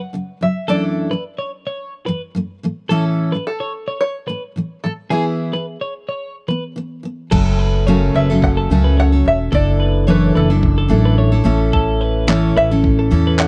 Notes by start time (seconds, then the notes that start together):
Already playing: F#5
0.13 F#2 C#3 F#3
0.41 F#2 C#3 F#3 E5
0.68 F#2 E3 A3 D4 E4 A4 D5
1.11 F#2 E3 A3 B4
1.39 C#5
1.67 C#5
2.06 F#2 E3 A3 B4
2.35 F#2 E3 A3
2.63 A2 E3 A3
2.89 A2 E3 A3 C#4 E4 A4
3.32 A2 E3 A3 B4
3.47 A4
3.60 C#5
3.88 C#5
4.01 C#5
4.28 A2 E3 A3 B4
4.56 A2 E3 A3
4.84 A2 E3 A3 A4
5.10 E3 B3 E4 G#4
5.53 E3 B4
5.81 C#5
6.09 C#5
6.48 E3 B3 B4
6.76 E3 B3
7.03 E3 B3
7.31 F#1 F#3 A3 C#4 A4, kick, crash
7.59 B4
7.87 F#2 C#3 F#3 A3 C#4 A4 C#5
8.14 F#1 B4 E5
8.30 F#2 C#3 F#3 A3 C#4 A4
8.42 F#5, kick
8.57 A4
8.70 C#2 F#2 C#3 F#3 A3 C#4 A4
8.84 B4
8.97 C#5 F#5
9.12 F#3 A3 C#4 A4
9.25 E1 E5
9.52 F#1 A3 D4 E4 A4 D5, kick
9.80 B4
10.07 F#2 E3 A3 D4 E4 A4 B4 C#5
10.35 F#1 A4 B4
10.50 F#2 E3 A3 D4 E4 A4
10.63 kick
10.78 A4
10.88 A1 F#2 E3 A3 D4 E4 A4
11.05 B4
11.18 C#5
11.32 A3 D4 E4 A4
11.44 A1 A2 E3 A3 C#4 E4 A4
11.73 A4, kick
12.01 B4
12.27 A2 E3 A3 C#4 E4 A4 C#5, clap
12.57 A1 B4 E5
12.71 A2 E3 A3 C#4 E4 A4
12.84 kick
12.99 A4
13.11 E2 A2 E3 A3 C#4 E4 A4
13.27 B4
13.39 C#5 F#5, clap